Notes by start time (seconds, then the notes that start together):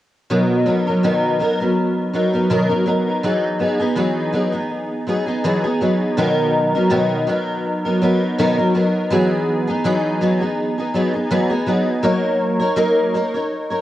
0.30 B2 D#3 F#3 B3 D#4 A#4
0.66 F#3 B3 D#4 A#4
0.87 F#3 B3 D#4 A#4
1.03 B2 D#3 F#3 B3 D#4 A#4
1.39 F#3 B3 D#4 A#4
1.60 F#3 B3 D#4 A#4
2.13 F#3 B3 D#4 A#4
2.33 F#3 B3 D#4 A#4
2.50 B2 D#3 F#3 B3 D#4 A#4
2.69 F#3 B3 D#4 A#4
2.86 F#3 B3 D#4 A#4
3.23 E3 F#3 B3 D#4 G#4
3.59 F#3 B3 D#4 G#4
3.80 B3 D#4 G#4
3.95 E3 F#3 B3 D#4 G#4
4.33 F#3 B3 D#4 G#4
4.52 B3 D#4 G#4
5.07 F#3 B3 D#4 G#4
5.26 B3 D#4 G#4
5.44 E3 F#3 B3 D#4 G#4
5.64 B3 D#4 G#4
5.81 F#3 B3 D#4 G#4
6.17 B2 D#3 F#3 B3 D#4 A#4
6.75 F#3 B3 D#4 A#4
6.90 B2 D#3 F#3 B3 D#4 A#4
7.27 F#3 B3 D#4 A#4
7.85 F#3 B3 D#4 A#4
8.02 F#3 B3 D#4 A#4
8.38 B2 D#3 F#3 B3 D#4 A#4
8.57 F#3 B3 D#4 A#4
8.74 F#3 B3 D#4 A#4
9.10 E3 F#3 B3 D#4 G#4
9.67 B3 D#4 G#4
9.84 E3 F#3 B3 D#4 G#4
10.21 F#3 B3 D#4 G#4
10.40 B3 D#4 G#4
10.78 B3 D#4 G#4
10.94 F#3 B3 D#4 G#4
11.13 B3 D#4 G#4
11.30 E3 F#3 B3 D#4 G#4
11.50 B3 D#4 G#4
11.66 F#3 B3 D#4 G#4
12.03 F#3 A#3 D#4 A#4 C#5
12.60 D#4 A#4 C#5
12.76 F#3 A#3 D#4 A#4 C#5
13.14 A#3 D#4 A#4 C#5
13.34 D#4 A#4 C#5
13.70 D#4 A#4 C#5